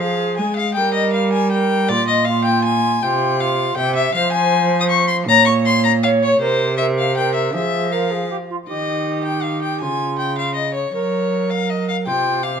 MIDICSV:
0, 0, Header, 1, 4, 480
1, 0, Start_track
1, 0, Key_signature, -4, "minor"
1, 0, Tempo, 376648
1, 972, Time_signature, 3, 2, 24, 8
1, 16057, End_track
2, 0, Start_track
2, 0, Title_t, "Violin"
2, 0, Program_c, 0, 40
2, 0, Note_on_c, 0, 77, 84
2, 468, Note_off_c, 0, 77, 0
2, 475, Note_on_c, 0, 80, 83
2, 711, Note_off_c, 0, 80, 0
2, 719, Note_on_c, 0, 77, 86
2, 943, Note_off_c, 0, 77, 0
2, 951, Note_on_c, 0, 79, 100
2, 1190, Note_off_c, 0, 79, 0
2, 1198, Note_on_c, 0, 75, 85
2, 1434, Note_off_c, 0, 75, 0
2, 1442, Note_on_c, 0, 77, 83
2, 1682, Note_off_c, 0, 77, 0
2, 1694, Note_on_c, 0, 80, 91
2, 1928, Note_off_c, 0, 80, 0
2, 1934, Note_on_c, 0, 79, 93
2, 2411, Note_on_c, 0, 74, 108
2, 2430, Note_off_c, 0, 79, 0
2, 2641, Note_off_c, 0, 74, 0
2, 2649, Note_on_c, 0, 75, 82
2, 2871, Note_on_c, 0, 77, 92
2, 2890, Note_off_c, 0, 75, 0
2, 3111, Note_off_c, 0, 77, 0
2, 3118, Note_on_c, 0, 79, 101
2, 3357, Note_off_c, 0, 79, 0
2, 3373, Note_on_c, 0, 80, 104
2, 3858, Note_on_c, 0, 79, 91
2, 3877, Note_off_c, 0, 80, 0
2, 4341, Note_on_c, 0, 77, 90
2, 4360, Note_off_c, 0, 79, 0
2, 4798, Note_off_c, 0, 77, 0
2, 4805, Note_on_c, 0, 79, 104
2, 5038, Note_off_c, 0, 79, 0
2, 5044, Note_on_c, 0, 76, 101
2, 5276, Note_off_c, 0, 76, 0
2, 5285, Note_on_c, 0, 77, 114
2, 5502, Note_off_c, 0, 77, 0
2, 5510, Note_on_c, 0, 80, 109
2, 6099, Note_off_c, 0, 80, 0
2, 6125, Note_on_c, 0, 87, 95
2, 6171, Note_off_c, 0, 87, 0
2, 6237, Note_on_c, 0, 85, 95
2, 6466, Note_off_c, 0, 85, 0
2, 6473, Note_on_c, 0, 84, 102
2, 6569, Note_off_c, 0, 84, 0
2, 6739, Note_on_c, 0, 82, 119
2, 6947, Note_off_c, 0, 82, 0
2, 6955, Note_on_c, 0, 85, 99
2, 7050, Note_off_c, 0, 85, 0
2, 7207, Note_on_c, 0, 84, 100
2, 7433, Note_off_c, 0, 84, 0
2, 7450, Note_on_c, 0, 82, 99
2, 7541, Note_off_c, 0, 82, 0
2, 7690, Note_on_c, 0, 77, 93
2, 7781, Note_off_c, 0, 77, 0
2, 7942, Note_on_c, 0, 73, 98
2, 8161, Note_off_c, 0, 73, 0
2, 8174, Note_on_c, 0, 72, 100
2, 8626, Note_off_c, 0, 72, 0
2, 8633, Note_on_c, 0, 76, 87
2, 8729, Note_off_c, 0, 76, 0
2, 8898, Note_on_c, 0, 77, 88
2, 9120, Note_off_c, 0, 77, 0
2, 9141, Note_on_c, 0, 79, 93
2, 9357, Note_off_c, 0, 79, 0
2, 9365, Note_on_c, 0, 76, 84
2, 9599, Note_off_c, 0, 76, 0
2, 9622, Note_on_c, 0, 76, 94
2, 10100, Note_on_c, 0, 77, 73
2, 10119, Note_off_c, 0, 76, 0
2, 10583, Note_off_c, 0, 77, 0
2, 11069, Note_on_c, 0, 75, 77
2, 11737, Note_off_c, 0, 75, 0
2, 11782, Note_on_c, 0, 79, 70
2, 12017, Note_on_c, 0, 77, 70
2, 12036, Note_off_c, 0, 79, 0
2, 12255, Note_off_c, 0, 77, 0
2, 12262, Note_on_c, 0, 79, 79
2, 12493, Note_off_c, 0, 79, 0
2, 12500, Note_on_c, 0, 80, 80
2, 12972, Note_off_c, 0, 80, 0
2, 12983, Note_on_c, 0, 79, 73
2, 13218, Note_off_c, 0, 79, 0
2, 13233, Note_on_c, 0, 77, 76
2, 13436, Note_off_c, 0, 77, 0
2, 13444, Note_on_c, 0, 75, 74
2, 13681, Note_off_c, 0, 75, 0
2, 13689, Note_on_c, 0, 73, 75
2, 13928, Note_off_c, 0, 73, 0
2, 13945, Note_on_c, 0, 73, 80
2, 14658, Note_on_c, 0, 77, 77
2, 14678, Note_off_c, 0, 73, 0
2, 14908, Note_on_c, 0, 75, 68
2, 14927, Note_off_c, 0, 77, 0
2, 15139, Note_off_c, 0, 75, 0
2, 15149, Note_on_c, 0, 77, 82
2, 15241, Note_off_c, 0, 77, 0
2, 15374, Note_on_c, 0, 79, 89
2, 15847, Note_on_c, 0, 77, 80
2, 15866, Note_off_c, 0, 79, 0
2, 16057, Note_off_c, 0, 77, 0
2, 16057, End_track
3, 0, Start_track
3, 0, Title_t, "Recorder"
3, 0, Program_c, 1, 74
3, 25, Note_on_c, 1, 68, 64
3, 486, Note_off_c, 1, 68, 0
3, 494, Note_on_c, 1, 68, 59
3, 983, Note_on_c, 1, 70, 68
3, 1002, Note_off_c, 1, 68, 0
3, 1929, Note_off_c, 1, 70, 0
3, 1937, Note_on_c, 1, 70, 69
3, 2421, Note_on_c, 1, 65, 67
3, 2440, Note_off_c, 1, 70, 0
3, 2890, Note_off_c, 1, 65, 0
3, 2898, Note_on_c, 1, 65, 70
3, 3831, Note_off_c, 1, 65, 0
3, 3842, Note_on_c, 1, 65, 71
3, 4307, Note_off_c, 1, 65, 0
3, 4314, Note_on_c, 1, 65, 69
3, 4782, Note_on_c, 1, 76, 75
3, 4801, Note_off_c, 1, 65, 0
3, 5270, Note_off_c, 1, 76, 0
3, 5282, Note_on_c, 1, 72, 79
3, 6368, Note_off_c, 1, 72, 0
3, 6720, Note_on_c, 1, 73, 78
3, 7653, Note_off_c, 1, 73, 0
3, 7673, Note_on_c, 1, 73, 72
3, 8141, Note_off_c, 1, 73, 0
3, 8148, Note_on_c, 1, 70, 71
3, 8596, Note_off_c, 1, 70, 0
3, 8630, Note_on_c, 1, 70, 60
3, 9101, Note_off_c, 1, 70, 0
3, 9112, Note_on_c, 1, 70, 66
3, 9582, Note_on_c, 1, 68, 66
3, 9601, Note_off_c, 1, 70, 0
3, 10069, Note_off_c, 1, 68, 0
3, 10077, Note_on_c, 1, 70, 84
3, 10329, Note_on_c, 1, 68, 68
3, 10348, Note_off_c, 1, 70, 0
3, 10571, Note_off_c, 1, 68, 0
3, 10578, Note_on_c, 1, 67, 73
3, 10655, Note_off_c, 1, 67, 0
3, 10823, Note_on_c, 1, 65, 61
3, 10900, Note_off_c, 1, 65, 0
3, 11052, Note_on_c, 1, 67, 51
3, 12507, Note_on_c, 1, 65, 54
3, 12527, Note_off_c, 1, 67, 0
3, 13535, Note_off_c, 1, 65, 0
3, 13928, Note_on_c, 1, 70, 59
3, 15363, Note_on_c, 1, 65, 56
3, 15382, Note_off_c, 1, 70, 0
3, 15836, Note_off_c, 1, 65, 0
3, 15844, Note_on_c, 1, 67, 62
3, 16057, Note_off_c, 1, 67, 0
3, 16057, End_track
4, 0, Start_track
4, 0, Title_t, "Cello"
4, 0, Program_c, 2, 42
4, 0, Note_on_c, 2, 53, 71
4, 487, Note_on_c, 2, 56, 62
4, 506, Note_off_c, 2, 53, 0
4, 969, Note_on_c, 2, 55, 70
4, 988, Note_off_c, 2, 56, 0
4, 2414, Note_on_c, 2, 46, 76
4, 2433, Note_off_c, 2, 55, 0
4, 3840, Note_on_c, 2, 48, 75
4, 3859, Note_off_c, 2, 46, 0
4, 4789, Note_off_c, 2, 48, 0
4, 4796, Note_on_c, 2, 48, 78
4, 5267, Note_off_c, 2, 48, 0
4, 5280, Note_on_c, 2, 53, 87
4, 6709, Note_on_c, 2, 46, 80
4, 6728, Note_off_c, 2, 53, 0
4, 8147, Note_off_c, 2, 46, 0
4, 8157, Note_on_c, 2, 48, 78
4, 9596, Note_on_c, 2, 53, 72
4, 9616, Note_off_c, 2, 48, 0
4, 10820, Note_off_c, 2, 53, 0
4, 11064, Note_on_c, 2, 51, 55
4, 12504, Note_on_c, 2, 49, 56
4, 12523, Note_off_c, 2, 51, 0
4, 13928, Note_off_c, 2, 49, 0
4, 13935, Note_on_c, 2, 54, 59
4, 15373, Note_on_c, 2, 48, 64
4, 15392, Note_off_c, 2, 54, 0
4, 16057, Note_off_c, 2, 48, 0
4, 16057, End_track
0, 0, End_of_file